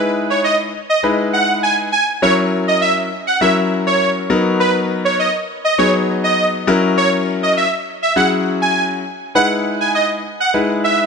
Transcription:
Already playing: G#3 D#4 E4 B4
0.30 C#5
0.44 D#5
0.90 D#5
1.03 G#3 D#4 E4 B4
1.33 F#5
1.63 G#5
1.92 G#5
2.22 F#3 C#4 E4 A#4 C#5
2.68 D#5
2.81 E5
3.27 F#5
3.41 F#3 C#4 E4 A#4 E5
3.87 C#5
4.30 F#3 B3 D#4 A#4
4.60 B4
5.05 C#5
5.19 D#5
5.65 D#5
5.78 F#3 B3 D#4 G#4 C#5
6.24 D#5
6.67 F#3 C#4 E4 A#4
6.97 C#5
7.43 D#5
7.57 E5
8.03 E5
8.16 F#3 C#4 E4 G#4 F#5
8.62 G#5
9.35 G#3 D#4 E4 B4 F#5
9.81 G#5
9.95 D#5
10.40 F#5
10.54 G#3 D#4 E4 B4
10.84 E5

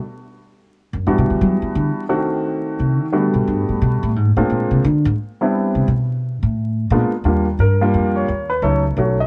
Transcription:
0.93 F#2
1.06 G2 E3 G3 B3 D4 F#4
1.18 B2
1.30 D3
1.41 F#3
1.62 E3
1.75 D3
2.09 D#3 A3 C4 D4 F#4
2.80 C3
3.00 D#3
3.12 D3 G3 A3 B3 D4 F#4
3.34 B2
3.48 G2
3.69 A2
3.82 B2
4.03 A2
4.16 G#2
4.36 A2 G#3 A#3 C4 D4 F4
4.50 A#2
4.71 C3
4.84 D3
5.05 G#2
5.41 G3 B3 C4 D4 E4
5.75 C3
5.88 B2
6.43 A2
6.90 A#2 G#3 A#3 B3 D4 F4
7.24 D#2 G3 A#3 D4 F4
7.59 G2 A#4
7.81 G3 A#3 D4 F4
7.94 F2
8.16 C#5
8.28 D#2
8.50 B4
8.62 C#2 F#3 A3 C#4 D#4 A4
8.97 B1 F#3 A3 C#4 F#4
9.20 D#5

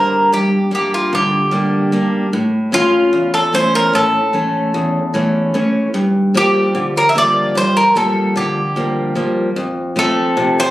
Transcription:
Already playing: D3 G3 A#3 D4 A#4
0.32 G2 G4
0.71 G3 A#3 D4 G4
0.94 F4
1.13 D3 G4
1.51 G3 A#3 D4
1.92 G3 A#3 D4
2.33 A2
2.72 C#3 A3 C#4 F4
3.13 E2
3.34 A4
3.53 E3 A3 C#4 C5
3.75 A#4
3.93 A2 A4
4.33 E3 A3 C#4
4.74 E2
5.14 E3 A3 C#4
5.54 E3 A3 C#4
5.94 G2
6.34 F3 G3 A#3 G4
6.75 D3
6.97 A#4
7.09 E5
7.15 F3 G3 A#3 D5
7.55 G2 C5
7.77 A#4
7.95 F3 G3 A#3 A4
8.36 D3 G4
8.76 F3 G3 A#3
9.15 F3 G3 A#3
9.56 F2
9.96 F3 A3 C4 A4
10.37 C3
10.60 C5

